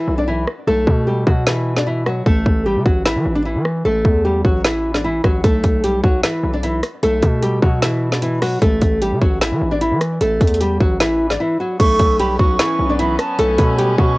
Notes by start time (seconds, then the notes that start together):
Already playing: E3 E4
0.08 B1
0.18 D4 D5
0.27 E3 E4
0.47 cross-stick
0.67 B1 A3 A4
0.87 B2, kick
1.07 G3 G4
1.27 B2 F#3 F#4, kick
1.47 E3 E4, snare
1.76 D4 D5, snare
1.86 E3 E4
2.06 F#3 F#4, cross-stick
2.26 A1 A3 A4, kick
2.46 A1, kick
2.66 G3 G4
2.76 C#3
2.86 A1 F#3 F#4, kick
3.06 E3 E4, snare
3.15 E3
3.25 A1
3.35 D4 D5
3.45 E3 E4
3.55 E3
3.65 cross-stick
3.85 A1 A3 A4
4.05 E2, kick
4.25 G3 G4
4.45 A1 F#3 F#4, kick
4.64 E3 E4, snare
4.94 D4 D5, snare
5.04 E3 E4
5.24 A1 F#3 F#4, kick, cross-stick
5.44 B1 A3 A4, kick, closed hi-hat
5.64 B1, kick, closed hi-hat
5.84 G3 G4, closed hi-hat
6.04 B1 F#3 F#4, kick
6.23 E3 E4, snare, closed hi-hat
6.43 B1
6.53 D4 D5
6.63 E3 E4, closed hi-hat
6.83 cross-stick, closed hi-hat
7.03 B1 A3 A4, closed hi-hat
7.23 B2, kick, closed hi-hat
7.43 G3 G4, closed hi-hat
7.63 B2 F#3 F#4, kick
7.82 E3 E4, snare, closed hi-hat
8.12 D4 D5, snare
8.22 E3 E4, closed hi-hat
8.42 F#3 F#4, cross-stick, open hi-hat
8.62 A1 A3 A4, kick, closed hi-hat
8.82 A1, kick, closed hi-hat
9.02 G3 G4, closed hi-hat
9.12 C#3
9.21 A1 F#3 F#4, kick
9.41 E3 E4, snare, closed hi-hat
9.51 E3
9.61 A1
9.71 D4 D5
9.81 E3 E4, closed hi-hat
9.91 E3
10.01 cross-stick, closed hi-hat
10.21 A1 A3 A4, closed hi-hat
10.41 E2, kick, closed hi-hat
10.47 closed hi-hat
10.54 closed hi-hat
10.61 G3 G4, closed hi-hat
10.80 A1 F#3 F#4, kick
11.00 E3 E4, snare, closed hi-hat
11.30 D4 D5, snare
11.40 E3 E4
11.60 F#3 F#4
11.80 B1 F#3 A3 B3 C#4 A4 C#6, kick, closed hi-hat, crash
11.99 B1, kick, closed hi-hat
12.20 G3 G4 B5, closed hi-hat
12.39 B1 F#3 F#4 C#6, kick
12.59 E3 E4, snare, closed hi-hat
12.79 B1
12.89 D4 D5
12.99 E3 E4 B5, closed hi-hat
13.19 A5, cross-stick, closed hi-hat
13.39 B1 A3 A4, closed hi-hat
13.58 B2 B5, kick, closed hi-hat
13.78 G3 G4, closed hi-hat
13.98 B2 F#3 F#4 C#6, kick